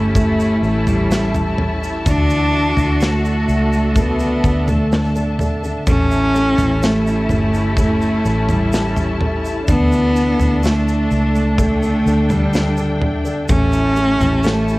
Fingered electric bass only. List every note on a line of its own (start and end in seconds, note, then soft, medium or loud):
0.00 0.59 G1 medium
0.62 2.02 A1 medium
2.06 2.73 D2 loud
2.77 3.45 D2 medium
3.48 4.40 C#2 medium
4.44 5.83 D2 medium
5.87 6.54 A1 medium
6.58 7.26 A1 medium
7.29 8.21 G1 medium
8.25 9.64 A1 medium
9.68 10.35 D2 loud
10.39 11.07 D2 loud
11.11 12.02 C#2 medium
12.06 13.45 D2 medium
13.49 14.16 A1 loud
14.20 14.79 A1 loud